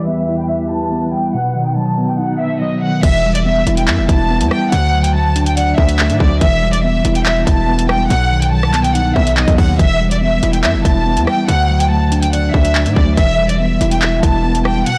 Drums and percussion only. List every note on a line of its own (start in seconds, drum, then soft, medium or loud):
3.03 kick loud
3.03 closed hi-hat medium
3.03 crash medium
3.35 closed hi-hat medium
3.67 closed hi-hat medium
3.77 closed hi-hat medium
3.88 clap loud
3.88 closed hi-hat soft
4.09 kick medium
4.09 closed hi-hat medium
4.41 closed hi-hat medium
4.51 cross-stick medium
4.72 closed hi-hat medium
5.04 closed hi-hat medium
5.36 closed hi-hat medium
5.46 closed hi-hat medium
5.57 closed hi-hat medium
5.78 kick medium
5.89 closed hi-hat medium
5.99 clap loud
6.10 closed hi-hat medium
6.20 kick medium
6.41 kick loud
6.41 closed hi-hat medium
6.73 closed hi-hat medium
7.05 closed hi-hat medium
7.15 closed hi-hat medium
7.26 clap loud
7.26 closed hi-hat soft
7.47 kick medium
7.47 closed hi-hat medium
7.79 closed hi-hat medium
7.89 cross-stick loud
8.10 closed hi-hat medium
8.42 closed hi-hat medium
8.63 cross-stick medium
8.74 clap medium
8.74 closed hi-hat medium
8.84 closed hi-hat medium
8.95 closed hi-hat medium
9.16 kick medium
9.27 closed hi-hat medium
9.37 clap loud
9.48 kick medium
9.48 closed hi-hat medium
9.58 kick medium
9.58 open hi-hat soft
9.79 kick loud
9.79 closed hi-hat medium
10.11 closed hi-hat medium
10.43 closed hi-hat medium
10.53 closed hi-hat medium
10.64 clap loud
10.64 closed hi-hat soft
10.85 kick medium
10.85 closed hi-hat medium
11.17 closed hi-hat medium
11.27 cross-stick medium
11.49 closed hi-hat medium
11.80 closed hi-hat medium
12.12 closed hi-hat medium
12.23 closed hi-hat medium
12.33 closed hi-hat medium
12.54 kick medium
12.65 closed hi-hat medium
12.75 clap loud
12.86 closed hi-hat medium
12.96 kick medium
13.17 kick loud
13.17 closed hi-hat medium
13.49 closed hi-hat medium
13.81 closed hi-hat medium
13.91 closed hi-hat medium
14.02 clap loud
14.02 closed hi-hat soft
14.23 kick medium
14.23 closed hi-hat medium
14.55 closed hi-hat medium
14.65 cross-stick medium
14.86 closed hi-hat medium